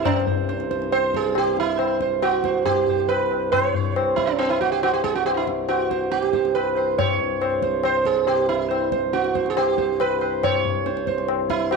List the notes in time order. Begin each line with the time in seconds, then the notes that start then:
0.05 C2 G2 C#4 C5, tabla na, tabla ge
0.27 C5, tabla ge
0.49 C5, tabla te
0.60 tabla te
0.71 C5, tabla ke
0.82 tabla te
0.92 C5, tabla na
1.14 G#4, tabla ke
1.35 G4, tabla na
1.57 E4, tabla te
1.79 C5, tabla na
2.00 C5, tabla ke
2.22 F#4, tabla na
2.44 C5, tabla ke
2.66 G4, tabla na, tabla ge
2.87 C5, tabla ge
3.09 B4, tabla na
3.31 tabla na
3.52 C#5, tabla na, tabla ge
3.75 C5, tabla ge
3.96 C5, tabla na
4.16 E4, tabla ke
4.27 C#4
4.39 C4, tabla na
4.50 E4
4.61 F#4, tabla ke
4.72 G4
4.83 F#4, tabla na
4.93 G4
5.04 G#4, tabla ke
5.15 F#4, tabla te
5.26 G4, tabla na
5.34 E4 F#4
5.47 tabla ke
5.69 F#4, tabla na
5.91 C5, tabla ke
6.11 F#4, tabla te
6.22 G4, tabla te
6.33 C5, tabla ke
6.45 tabla te
6.55 B4, tabla na
6.77 C5, tabla na
6.98 C2 G2 C#5, tabla na, tabla ge
7.20 tabla ge
7.42 C5, tabla na
7.62 C5, tabla ke
7.83 C5, tabla na
8.05 G#4, tabla ke
8.27 G4, tabla na
8.49 E4, tabla te
8.70 C5, tabla na
8.92 C5, tabla ke
9.13 F#4, tabla te
9.24 tabla te
9.35 C5, tabla ke
9.46 G#4, tabla te
9.57 G4, tabla na
9.78 C5, tabla ke
10.00 B4, tabla na
10.21 C5, tabla na
10.43 C#5, tabla na, tabla ge
10.65 tabla ge
10.86 C5, tabla te
10.97 tabla te
11.07 C5, tabla ke
11.18 tabla te
11.28 tabla na
11.50 E4, tabla ke
11.71 F#4, tabla na